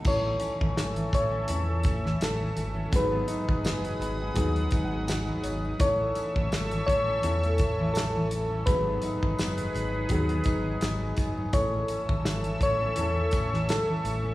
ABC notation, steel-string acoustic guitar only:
X:1
M:4/4
L:1/16
Q:"Swing 16ths" 1/4=84
K:Alyd
V:1 name="Steel-string acoustic guitar"
z A, C E, A, E, A, C2 A, C E, A, E, A, C | G,, B, D F, B, F, B, D G,, B, D F, B, F, B, D | z A, C E, A, E, A, C A,, A, C E, A, E, A, C | G,, B, D F, B, F, B, D G,, B, D F, B, F, B, D |
z A, C E, A, E, A, C A,, A, C E, A, E, A, C |]